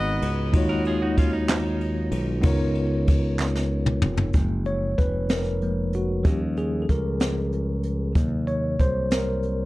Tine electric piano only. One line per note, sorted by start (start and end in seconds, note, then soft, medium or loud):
0.00 0.56 G#2 medium
0.00 0.49 G#3 medium
0.00 0.50 B3 medium
0.00 0.51 D#4 medium
0.00 0.51 F#4 medium
0.00 0.52 A#5 medium
0.52 1.45 D#3 medium
0.52 2.40 G#3 medium
0.52 2.40 D#4 medium
0.52 2.41 F4 medium
0.52 2.42 F#4 medium
0.57 2.42 C#5 medium
2.42 3.35 C#3 medium
2.42 4.30 B3 medium
2.42 4.30 D#4 medium
2.42 4.31 F4 medium
2.42 4.31 A#4 medium
2.46 4.32 C#5 medium
4.34 4.77 F3 soft
4.34 4.77 G#3 soft
4.34 4.78 A#3 soft
4.66 4.99 C#5 medium
4.98 5.28 B4 medium
5.30 5.90 A#4 medium
5.62 5.90 F3 soft
5.62 5.91 G#3 soft
5.62 5.91 A#3 soft
5.95 6.27 F#4 medium
6.23 6.66 F3 soft
6.23 6.67 G3 soft
6.23 6.67 C#4 soft
6.23 6.40 G4 medium
6.58 6.83 G#4 medium
6.82 6.89 A4 soft
6.90 7.49 A#4 medium
8.15 9.65 C3 medium
8.15 9.65 F#3 soft
8.15 9.65 A#3 soft
8.47 8.80 C#5 medium
8.81 9.13 C5 medium
9.12 9.65 A#4 medium